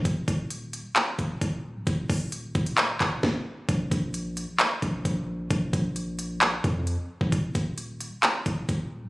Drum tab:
HH |x-x-x-x-x-x-x---|x-o-x-xxx-x-----|x-x-x-x-x-x-x---|x-x-x-x-x-x-x---|
CP |--------x-------|--------x-x-----|--------x-------|--------x-------|
SD |----------------|------------o---|----------------|----------------|
BD |o-o-------o-o---|o-o---o---o-o---|o-o-------o-o---|o-o-------o----o|

HH |x-x-x-x-x-x-x---|
CP |--------x-------|
SD |----------------|
BD |o-o-------o-o---|